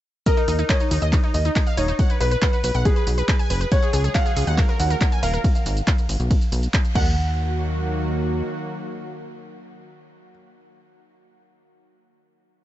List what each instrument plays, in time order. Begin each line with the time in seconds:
0.26 grand piano A#4, synth pluck D#5, kick, closed hi-hat, ride, shaker
0.37 synth pluck D#4, closed hi-hat, shaker
0.48 analog synth bass D#2, synth pluck D#4, open hi-hat, shaker
0.59 synth pluck D#4, closed hi-hat, shaker
0.69 grand piano C#5, synth pluck D#5, kick, clap, closed hi-hat, ride, shaker
0.80 synth pluck D#4, closed hi-hat, shaker
0.91 analog synth bass D#2, synth pluck D#4, open hi-hat, shaker
1.02 analog synth bass D#2, synth pluck D#5, closed hi-hat, shaker
1.13 synth pluck D#4, kick, clap, closed hi-hat, ride, shaker
1.23 synth pluck D#4, closed hi-hat
1.34 analog synth bass D#2, grand piano D#5, open hi-hat, shaker
1.45 synth pluck D#4, closed hi-hat, shaker
1.56 kick, clap, closed hi-hat, ride, shaker
1.67 synth pluck F5, closed hi-hat, shaker
1.77 analog synth bass D#1, synth pluck D#4, grand piano C#5, open hi-hat, shaker
1.88 synth pluck D#4, closed hi-hat, shaker
1.99 synth pluck F#5, kick, closed hi-hat, ride, shaker
2.10 synth pluck B4, closed hi-hat, shaker
2.21 analog synth bass B1, grand piano B4, synth pluck B4, open hi-hat, shaker
2.31 synth pluck B4, closed hi-hat, shaker
2.42 synth pluck F#5, kick, clap, closed hi-hat, ride, shaker
2.53 synth pluck B4, closed hi-hat, shaker
2.64 analog synth bass B1, synth pluck B4, open hi-hat, shaker
2.75 analog synth bass B1, synth pluck F#5, closed hi-hat, shaker
2.85 grand piano G#4, synth pluck B4, kick, closed hi-hat, ride, shaker
2.96 synth pluck B4, closed hi-hat
3.07 analog synth bass B1, open hi-hat, shaker
3.18 synth pluck B4, closed hi-hat, shaker
3.29 synth pluck B4, kick, clap, closed hi-hat, ride, shaker
3.39 synth pluck G#5, closed hi-hat, shaker
3.50 analog synth bass F#1, synth pluck B4, open hi-hat, shaker
3.61 synth pluck B4, closed hi-hat, shaker
3.72 analog synth pad C#3 F#3 G#3 F#4, grand piano C#5, synth pluck F#5, kick, closed hi-hat, ride, shaker
3.82 synth pluck G#4, closed hi-hat, shaker
3.93 analog synth bass C#2, synth pluck G#4, open hi-hat, shaker
4.04 synth pluck G#4, closed hi-hat, shaker
4.15 grand piano F5, synth pluck F#5, kick, clap, closed hi-hat, ride, shaker
4.26 synth pluck G#4, closed hi-hat, shaker
4.36 analog synth bass C#2, synth pluck G#4, open hi-hat, shaker
4.47 analog synth bass D#2, synth pluck F#5, closed hi-hat, shaker
4.58 analog synth pad D#3 F#3 A#3, synth pluck A#4, kick, clap, closed hi-hat, ride, shaker
4.69 synth pluck A#4, closed hi-hat
4.80 analog synth bass D#2, grand piano F#5, open hi-hat, shaker
4.90 synth pluck A#4, closed hi-hat, shaker
5.01 synth pluck A#4, kick, clap, closed hi-hat, ride, shaker
5.12 synth pluck G#5, closed hi-hat, shaker
5.23 analog synth bass D#1, synth pluck A#4, grand piano F5, open hi-hat, shaker
5.34 synth pluck A#4, closed hi-hat, shaker
5.44 kick, closed hi-hat, ride, shaker
5.55 closed hi-hat, shaker
5.66 analog synth bass G#1, open hi-hat, shaker
5.77 closed hi-hat, shaker
5.87 kick, clap, closed hi-hat, ride, shaker
5.98 closed hi-hat, shaker
6.09 analog synth bass G#1, open hi-hat, shaker
6.20 analog synth bass B1, closed hi-hat, shaker
6.31 kick, closed hi-hat, ride, shaker
6.41 closed hi-hat, shaker
6.52 analog synth bass B1, open hi-hat, shaker
6.63 closed hi-hat, shaker
6.74 kick, clap, closed hi-hat, ride, shaker
6.85 closed hi-hat, shaker
6.95 analog synth bass D#2, analog synth pad D#3 F#3 A#3 F#4, grand piano F#5, synth pluck F#5, kick, crash